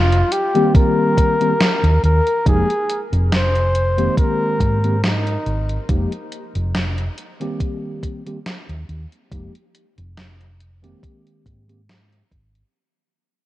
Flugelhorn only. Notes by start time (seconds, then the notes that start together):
Already playing: F4
0.32 G4
0.76 A#4
2.04 A#4
2.47 G#4
3.33 C5
4.18 A#4
5.04 D#4